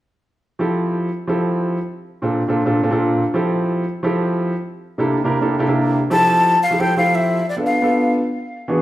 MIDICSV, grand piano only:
0, 0, Header, 1, 2, 480
1, 0, Start_track
1, 0, Key_signature, -1, "major"
1, 0, Tempo, 344432
1, 831, Time_signature, 4, 2, 24, 8
1, 12289, End_track
2, 0, Start_track
2, 0, Title_t, "Grand piano"
2, 0, Program_c, 0, 0
2, 823, Note_on_c, 0, 53, 73
2, 828, Note_on_c, 0, 60, 67
2, 837, Note_on_c, 0, 64, 67
2, 841, Note_on_c, 0, 67, 70
2, 847, Note_on_c, 0, 69, 84
2, 1499, Note_off_c, 0, 53, 0
2, 1502, Note_off_c, 0, 60, 0
2, 1506, Note_off_c, 0, 64, 0
2, 1508, Note_off_c, 0, 67, 0
2, 1511, Note_off_c, 0, 69, 0
2, 1776, Note_on_c, 0, 53, 75
2, 1785, Note_on_c, 0, 60, 66
2, 1790, Note_on_c, 0, 64, 67
2, 1793, Note_on_c, 0, 67, 62
2, 1802, Note_on_c, 0, 69, 82
2, 2456, Note_off_c, 0, 53, 0
2, 2460, Note_off_c, 0, 60, 0
2, 2463, Note_off_c, 0, 64, 0
2, 2465, Note_off_c, 0, 67, 0
2, 2469, Note_off_c, 0, 69, 0
2, 3092, Note_on_c, 0, 46, 72
2, 3100, Note_on_c, 0, 60, 74
2, 3105, Note_on_c, 0, 62, 64
2, 3109, Note_on_c, 0, 65, 62
2, 3118, Note_on_c, 0, 69, 80
2, 3354, Note_off_c, 0, 46, 0
2, 3358, Note_off_c, 0, 60, 0
2, 3361, Note_off_c, 0, 62, 0
2, 3363, Note_off_c, 0, 65, 0
2, 3367, Note_off_c, 0, 69, 0
2, 3456, Note_on_c, 0, 46, 74
2, 3462, Note_on_c, 0, 60, 68
2, 3467, Note_on_c, 0, 62, 63
2, 3476, Note_on_c, 0, 65, 71
2, 3479, Note_on_c, 0, 69, 83
2, 3633, Note_off_c, 0, 46, 0
2, 3635, Note_off_c, 0, 60, 0
2, 3638, Note_off_c, 0, 62, 0
2, 3642, Note_off_c, 0, 65, 0
2, 3644, Note_off_c, 0, 69, 0
2, 3693, Note_on_c, 0, 46, 79
2, 3701, Note_on_c, 0, 60, 71
2, 3704, Note_on_c, 0, 62, 67
2, 3711, Note_on_c, 0, 65, 70
2, 3717, Note_on_c, 0, 69, 87
2, 3871, Note_off_c, 0, 46, 0
2, 3875, Note_off_c, 0, 60, 0
2, 3876, Note_off_c, 0, 62, 0
2, 3880, Note_off_c, 0, 65, 0
2, 3883, Note_off_c, 0, 69, 0
2, 3939, Note_on_c, 0, 46, 76
2, 3948, Note_on_c, 0, 60, 72
2, 3953, Note_on_c, 0, 62, 71
2, 3956, Note_on_c, 0, 65, 72
2, 3961, Note_on_c, 0, 69, 89
2, 4030, Note_off_c, 0, 46, 0
2, 4034, Note_off_c, 0, 60, 0
2, 4037, Note_off_c, 0, 62, 0
2, 4038, Note_off_c, 0, 65, 0
2, 4041, Note_off_c, 0, 69, 0
2, 4051, Note_on_c, 0, 46, 78
2, 4055, Note_on_c, 0, 60, 69
2, 4063, Note_on_c, 0, 62, 69
2, 4069, Note_on_c, 0, 65, 71
2, 4075, Note_on_c, 0, 69, 84
2, 4482, Note_off_c, 0, 46, 0
2, 4484, Note_off_c, 0, 60, 0
2, 4488, Note_off_c, 0, 62, 0
2, 4491, Note_off_c, 0, 65, 0
2, 4494, Note_off_c, 0, 69, 0
2, 4652, Note_on_c, 0, 53, 76
2, 4658, Note_on_c, 0, 60, 71
2, 4666, Note_on_c, 0, 64, 70
2, 4672, Note_on_c, 0, 67, 66
2, 4677, Note_on_c, 0, 69, 89
2, 5335, Note_off_c, 0, 53, 0
2, 5338, Note_off_c, 0, 60, 0
2, 5342, Note_off_c, 0, 64, 0
2, 5345, Note_off_c, 0, 67, 0
2, 5348, Note_off_c, 0, 69, 0
2, 5614, Note_on_c, 0, 53, 82
2, 5623, Note_on_c, 0, 60, 69
2, 5630, Note_on_c, 0, 64, 70
2, 5633, Note_on_c, 0, 67, 78
2, 5637, Note_on_c, 0, 69, 86
2, 6296, Note_off_c, 0, 53, 0
2, 6301, Note_off_c, 0, 60, 0
2, 6304, Note_off_c, 0, 64, 0
2, 6306, Note_off_c, 0, 67, 0
2, 6308, Note_off_c, 0, 69, 0
2, 6941, Note_on_c, 0, 48, 77
2, 6943, Note_on_c, 0, 58, 68
2, 6950, Note_on_c, 0, 62, 71
2, 6954, Note_on_c, 0, 64, 72
2, 6959, Note_on_c, 0, 67, 69
2, 6966, Note_on_c, 0, 69, 88
2, 7200, Note_off_c, 0, 48, 0
2, 7201, Note_off_c, 0, 58, 0
2, 7204, Note_off_c, 0, 62, 0
2, 7206, Note_off_c, 0, 64, 0
2, 7209, Note_off_c, 0, 67, 0
2, 7212, Note_off_c, 0, 69, 0
2, 7301, Note_on_c, 0, 48, 76
2, 7305, Note_on_c, 0, 58, 75
2, 7309, Note_on_c, 0, 62, 68
2, 7315, Note_on_c, 0, 64, 72
2, 7320, Note_on_c, 0, 67, 72
2, 7327, Note_on_c, 0, 70, 84
2, 7476, Note_off_c, 0, 48, 0
2, 7477, Note_off_c, 0, 58, 0
2, 7480, Note_off_c, 0, 62, 0
2, 7483, Note_off_c, 0, 64, 0
2, 7485, Note_off_c, 0, 67, 0
2, 7489, Note_off_c, 0, 70, 0
2, 7537, Note_on_c, 0, 48, 72
2, 7545, Note_on_c, 0, 58, 72
2, 7549, Note_on_c, 0, 62, 76
2, 7554, Note_on_c, 0, 64, 66
2, 7557, Note_on_c, 0, 67, 75
2, 7562, Note_on_c, 0, 69, 83
2, 7714, Note_off_c, 0, 48, 0
2, 7718, Note_off_c, 0, 58, 0
2, 7720, Note_off_c, 0, 62, 0
2, 7722, Note_off_c, 0, 64, 0
2, 7724, Note_off_c, 0, 67, 0
2, 7726, Note_off_c, 0, 69, 0
2, 7782, Note_on_c, 0, 48, 81
2, 7789, Note_on_c, 0, 58, 77
2, 7794, Note_on_c, 0, 62, 70
2, 7800, Note_on_c, 0, 64, 76
2, 7802, Note_on_c, 0, 67, 74
2, 7808, Note_on_c, 0, 69, 90
2, 7872, Note_off_c, 0, 48, 0
2, 7876, Note_off_c, 0, 58, 0
2, 7878, Note_off_c, 0, 62, 0
2, 7881, Note_off_c, 0, 64, 0
2, 7882, Note_off_c, 0, 67, 0
2, 7885, Note_off_c, 0, 69, 0
2, 7900, Note_on_c, 0, 48, 81
2, 7909, Note_on_c, 0, 58, 68
2, 7915, Note_on_c, 0, 62, 76
2, 7918, Note_on_c, 0, 64, 66
2, 7922, Note_on_c, 0, 67, 73
2, 7927, Note_on_c, 0, 69, 85
2, 8327, Note_off_c, 0, 48, 0
2, 8331, Note_off_c, 0, 58, 0
2, 8334, Note_off_c, 0, 62, 0
2, 8336, Note_off_c, 0, 64, 0
2, 8338, Note_off_c, 0, 67, 0
2, 8340, Note_off_c, 0, 69, 0
2, 8504, Note_on_c, 0, 53, 83
2, 8510, Note_on_c, 0, 60, 77
2, 8516, Note_on_c, 0, 64, 78
2, 8523, Note_on_c, 0, 67, 78
2, 8525, Note_on_c, 0, 69, 87
2, 9097, Note_off_c, 0, 53, 0
2, 9100, Note_off_c, 0, 60, 0
2, 9103, Note_off_c, 0, 64, 0
2, 9106, Note_off_c, 0, 67, 0
2, 9107, Note_off_c, 0, 69, 0
2, 9347, Note_on_c, 0, 53, 69
2, 9354, Note_on_c, 0, 60, 57
2, 9359, Note_on_c, 0, 64, 53
2, 9366, Note_on_c, 0, 67, 59
2, 9372, Note_on_c, 0, 69, 64
2, 9434, Note_off_c, 0, 53, 0
2, 9438, Note_off_c, 0, 60, 0
2, 9440, Note_off_c, 0, 64, 0
2, 9443, Note_off_c, 0, 67, 0
2, 9447, Note_off_c, 0, 69, 0
2, 9468, Note_on_c, 0, 53, 66
2, 9471, Note_on_c, 0, 60, 64
2, 9480, Note_on_c, 0, 64, 59
2, 9482, Note_on_c, 0, 67, 62
2, 9491, Note_on_c, 0, 69, 78
2, 9638, Note_off_c, 0, 53, 0
2, 9640, Note_off_c, 0, 60, 0
2, 9644, Note_off_c, 0, 64, 0
2, 9645, Note_off_c, 0, 67, 0
2, 9650, Note_off_c, 0, 69, 0
2, 9708, Note_on_c, 0, 53, 67
2, 9711, Note_on_c, 0, 60, 65
2, 9718, Note_on_c, 0, 64, 61
2, 9724, Note_on_c, 0, 67, 70
2, 9731, Note_on_c, 0, 69, 74
2, 10298, Note_off_c, 0, 53, 0
2, 10299, Note_off_c, 0, 60, 0
2, 10303, Note_off_c, 0, 64, 0
2, 10305, Note_off_c, 0, 67, 0
2, 10309, Note_off_c, 0, 69, 0
2, 10542, Note_on_c, 0, 59, 64
2, 10551, Note_on_c, 0, 62, 58
2, 10561, Note_on_c, 0, 65, 54
2, 10566, Note_on_c, 0, 69, 72
2, 10798, Note_off_c, 0, 59, 0
2, 10803, Note_off_c, 0, 62, 0
2, 10807, Note_off_c, 0, 65, 0
2, 10810, Note_off_c, 0, 69, 0
2, 10899, Note_on_c, 0, 59, 78
2, 10905, Note_on_c, 0, 62, 63
2, 10918, Note_on_c, 0, 65, 66
2, 10924, Note_on_c, 0, 69, 80
2, 11384, Note_off_c, 0, 59, 0
2, 11387, Note_off_c, 0, 62, 0
2, 11393, Note_off_c, 0, 65, 0
2, 11396, Note_off_c, 0, 69, 0
2, 12096, Note_on_c, 0, 52, 77
2, 12102, Note_on_c, 0, 59, 66
2, 12109, Note_on_c, 0, 62, 67
2, 12115, Note_on_c, 0, 66, 65
2, 12120, Note_on_c, 0, 68, 75
2, 12269, Note_off_c, 0, 52, 0
2, 12272, Note_off_c, 0, 59, 0
2, 12276, Note_off_c, 0, 62, 0
2, 12279, Note_off_c, 0, 66, 0
2, 12281, Note_off_c, 0, 68, 0
2, 12289, End_track
0, 0, End_of_file